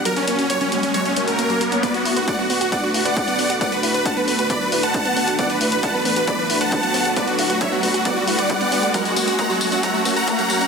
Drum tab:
HH |xxxxxxxxxxxxxxxx|xxoxx-oxx-oxxxox|xxoxx-oxx-oxxxox|xxoxx-oxx-oxxxox|
TB |----------------|----------------|----------------|----------------|
BD |----------------|o---o---o---o---|o---o---o---o---|o---o---o---o---|

HH |xxoxx-oxx-oxxxox|xxoxx-oxx-oxxxox|
TB |----------------|xxxxxxxxxxxxxxxx|
BD |o---o---o---o---|o---o---o---o---|